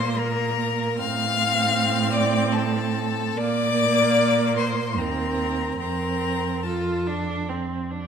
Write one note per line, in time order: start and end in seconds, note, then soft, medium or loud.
0.00 1.01 A#2 medium
0.00 0.96 A#3 medium
0.00 0.18 C5 medium
0.00 0.20 C6 loud
0.17 1.01 A#4 medium
0.17 0.98 A#5 loud
0.99 3.38 A2 medium
0.99 3.34 C4 medium
0.99 2.12 F5 loud
0.99 2.14 F6 loud
2.13 2.51 D5 loud
2.13 2.53 D6 loud
2.51 3.39 A4 medium
2.51 3.39 A5 loud
3.37 5.00 A#2 medium
3.37 5.00 A#3 medium
3.37 4.58 D5 loud
3.37 4.56 D6 loud
4.57 5.01 C5 medium
4.57 5.00 C6 medium
4.98 5.79 D#2 medium
4.98 5.79 C4 medium
4.98 5.80 A#4 medium
4.98 5.79 A#5 medium
5.80 8.07 F2 medium
5.80 6.63 C4 medium
5.80 6.69 A#4 medium
5.80 6.64 A#5 loud
6.63 7.09 F4 medium
6.63 7.48 A5 medium
6.67 7.50 A4 medium
7.07 7.51 D4 medium
7.49 7.92 C4 medium
7.91 8.07 D4 medium